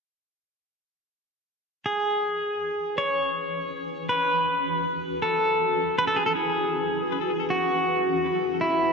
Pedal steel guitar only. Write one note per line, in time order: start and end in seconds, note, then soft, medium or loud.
1.86 3.01 G#4 medium
2.98 4.09 C#5 medium
4.09 5.22 B4 medium
5.22 5.98 A4 medium
5.98 6.07 B4 medium
6.07 6.17 A4 medium
6.16 6.26 G#4 medium
6.26 6.35 A4 medium
6.35 7.52 G#4 medium
7.50 8.66 F#4 medium
8.61 8.93 E4 medium